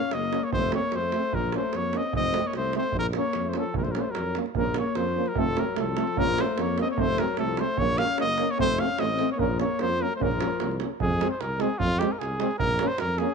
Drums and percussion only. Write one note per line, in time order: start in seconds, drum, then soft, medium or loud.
0.11 davul high medium
0.33 davul high medium
0.43 davul high soft
0.53 davul low loud
0.72 davul high medium
0.92 davul high medium
1.12 davul high medium
1.23 davul high soft
1.33 davul low medium
1.52 davul high medium
1.73 davul high medium
1.93 davul high medium
2.03 davul high soft
2.13 davul low loud
2.34 davul high medium
2.53 davul high medium
2.73 davul high medium
2.83 davul high soft
2.92 davul low medium
3.13 davul high medium
3.33 davul high medium
3.53 davul high medium
3.64 davul high soft
3.74 davul low loud
3.85 davul high soft
3.95 davul high medium
4.15 davul high medium
4.35 davul high medium
4.46 davul high soft
4.55 davul low loud
4.74 davul high medium
4.95 davul high medium
5.26 davul high soft
5.36 davul low loud
5.57 davul high medium
5.76 davul high medium
5.97 davul high medium
6.07 davul high soft
6.17 davul low loud
6.38 davul high medium
6.58 davul high medium
6.78 davul high medium
6.89 davul high soft
6.98 davul low loud
7.09 davul high soft
7.18 davul high medium
7.28 davul high soft
7.37 davul high medium
7.57 davul high medium
7.77 davul low medium
7.98 davul high medium
8.18 davul high medium
8.38 davul high medium
8.49 davul high soft
8.59 davul low loud
8.78 davul high medium
8.98 davul high medium
9.19 davul high medium
9.29 davul high soft
9.39 davul low medium
9.60 davul high medium
9.79 davul high medium
10.12 davul high soft
10.21 davul low loud
10.31 davul high soft
10.41 davul high medium
10.51 davul high soft
10.60 davul high medium
10.71 davul high soft
10.80 davul high medium
11.00 davul low loud
11.21 davul high medium
11.41 davul high medium
11.60 davul high medium
11.70 davul high soft
11.80 davul low medium
12.01 davul high medium
12.21 davul high medium
12.40 davul high medium
12.51 davul high soft
12.60 davul low loud
12.79 davul high medium
12.98 davul high medium
13.18 davul high medium
13.29 davul high soft